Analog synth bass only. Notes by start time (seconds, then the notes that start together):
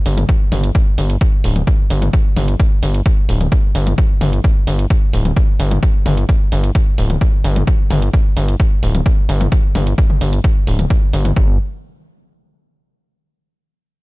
0.06 G1
0.52 G1
0.98 G1
1.44 D1
1.90 G1
2.37 G1
2.83 G1
3.29 D1
3.75 G1
4.21 G1
4.67 G1
5.13 D1
5.60 G1
6.06 G1
6.52 G1
6.98 D1
7.44 G1
7.91 G1
8.37 G1
8.83 D1
9.29 G1
9.75 G1
10.21 G1
10.67 D1
11.13 G1
11.37 G1